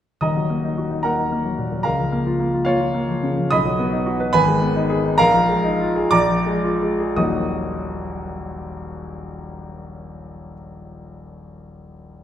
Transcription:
0.21 D#1 D#2 D#5 A#5 D#6
0.37 F#3
0.50 A#3
0.64 D#4
0.78 F#4
0.91 D#4
1.03 A#3 A#4 F#5 A#5
1.18 D#4
1.32 A#3
1.45 F#3
1.59 A#2
1.72 F#3
1.83 C#2 A#4 F5 A#5
1.99 F3
2.12 A#3
2.26 F4
2.40 A#3
2.54 F4
2.65 A#3 F4 C#5 F5
2.80 F4
2.94 A#3
3.09 F3
3.23 C#3
3.38 F3
3.51 B1 D#5 B5 D#6
3.65 F#3
3.79 B3
3.92 D#4
4.06 F#4
4.20 B4
4.33 G#1 B4 G#5 B5
4.47 G#3
4.61 B3
4.76 D#4
4.90 G#4
5.05 D#4
5.18 A#1 A#4 F5 A#5
5.34 F3
5.49 G#3
5.64 D#4
5.80 F4
5.96 G#4
6.11 A#1 D5 A#5 D6
6.29 F3
6.46 G#3
6.64 F4
6.82 G#3
7.00 G#4
7.16 D#1 A#1 F#3 A#3 D#4 F#4 D#6

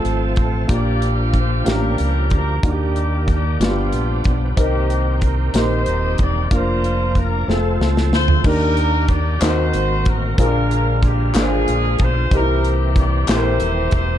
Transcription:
Already playing: F3 A3 C4 F4 A4
0.04 G#1, closed hi-hat
0.36 A1 A4, kick, closed hi-hat
0.68 A#1 A#2 F3 A#3 D4 F4 G4, kick, closed hi-hat
0.72 F4 G4 D5
1.02 closed hi-hat
1.34 kick, closed hi-hat
1.38 C5
1.64 A1 A#3 C#4 D4 F4 G4, snare, closed hi-hat
1.69 D4 A#4
1.98 C#2, closed hi-hat
2.30 D2, kick, closed hi-hat
2.35 A#4
2.63 D#2 D#3 A#3 D4 F4 F#4, kick, closed hi-hat
2.68 A#3 D4 G4
2.96 closed hi-hat
3.28 G4, kick, closed hi-hat
3.59 G1 G2 F3 A3 B3 D4 F4 F#4 G4, snare, closed hi-hat
3.67 B3 G4
3.92 A#1, closed hi-hat
4.24 B1, kick, closed hi-hat
4.56 C2 C3 A#3 C4 D#4 G4 A#4, kick, closed hi-hat
4.60 D#3 A#3 C4 G4
4.90 closed hi-hat
5.21 A#4, kick, closed hi-hat
5.54 A#1 C4 D#4 G4 A#4 C5, snare, closed hi-hat
5.86 D#1, closed hi-hat
6.18 E1 D5, kick, closed hi-hat
6.51 F1 F3 A#3 D4 F4 A#4, kick, closed hi-hat
6.55 C5
6.84 closed hi-hat
7.15 A#4, kick, closed hi-hat
7.48 F1 F3 A3 C4 F4 G#4 A4, snare
7.52 A4
7.80 C#2, snare
7.97 snare
8.11 D2 C5, snare
8.28 floor tom
8.44 D#2 D#3 A#3 D4 G4 A#4, kick, crash
8.77 closed hi-hat
9.08 D5, kick, closed hi-hat
9.39 D#2 D#3 A#3 C4 D#4 F#4 A#4 C5, snare, clap, closed hi-hat
9.74 G#1, closed hi-hat
10.05 A1 A#4, kick, closed hi-hat
10.38 A#1 A#2 D3 G#3 A#3 C4 D4 E4 F4 G#4 A#4, kick, closed hi-hat
10.45 D4 F4
10.71 closed hi-hat
11.03 G4, kick, closed hi-hat
11.34 G#1 D4 F4 G#4 A#4, snare, clap, closed hi-hat
11.38 F4 C5
11.68 A#1, closed hi-hat
11.99 B1 C5, kick, closed hi-hat
12.31 C2 C3 E3 A#3 C4 D#4 G4 A#4, kick, closed hi-hat
12.35 E4 G4 A#4
12.65 closed hi-hat
12.96 D5, kick, closed hi-hat
13.27 A#1 C4 E4 G4 A4 C5, snare, clap, closed hi-hat
13.37 A#4
13.60 D#1, closed hi-hat
13.91 E1 C5, kick, closed hi-hat

